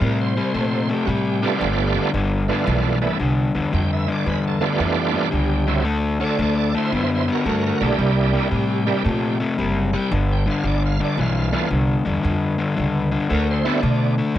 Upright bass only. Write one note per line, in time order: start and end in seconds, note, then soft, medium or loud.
0.01 0.36 A2 medium
0.54 0.89 A#2 medium
1.07 1.43 A2 medium
1.61 1.96 G1 loud
2.14 2.49 G1 medium
2.67 3.02 B1 loud
3.20 3.43 C2 medium
3.55 3.67 E2 medium
3.73 4.09 F2 loud
4.26 4.61 E2 medium
4.80 5.15 F2 medium
5.33 5.86 C#2 medium
5.86 6.21 D2 loud
6.39 6.74 D2 medium
6.92 7.28 F#2 medium
7.45 7.69 G2 medium
7.81 7.92 B1 medium
7.99 8.34 C2 loud
8.52 8.87 A2 medium
9.06 9.40 A#2 medium
9.58 9.93 F#1 medium
10.12 10.46 G1 loud
10.64 10.99 G1 medium
11.17 11.52 B1 medium
11.71 11.94 C2 medium
12.07 12.18 E2 medium
12.24 12.59 F2 loud
12.78 13.13 C#2 medium
13.30 13.65 D2 medium
13.83 14.18 B2 loud